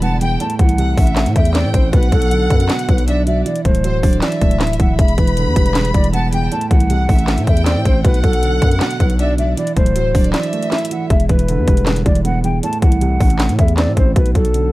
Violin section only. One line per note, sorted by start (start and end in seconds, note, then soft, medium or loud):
0.02 0.20 A5 medium
0.21 0.39 G5 loud
0.78 0.97 F#5 medium
0.98 1.34 E5 medium
1.36 1.90 G5 medium
1.93 3.04 F#5 loud
3.08 3.26 E5 medium
3.27 3.45 D5 medium
3.84 4.02 C5 medium
4.03 4.21 D5 medium
4.22 4.95 E5 medium
4.99 6.09 B5 loud
6.13 6.32 A5 medium
6.33 6.51 G5 medium
6.90 7.08 F#5 medium
7.09 7.45 E5 medium
7.47 8.01 G5 medium
8.04 9.15 F#5 loud
9.19 9.37 E5 medium
9.38 9.57 D5 medium
9.96 10.14 C5 medium
10.15 10.33 D5 medium
10.34 11.06 E5 medium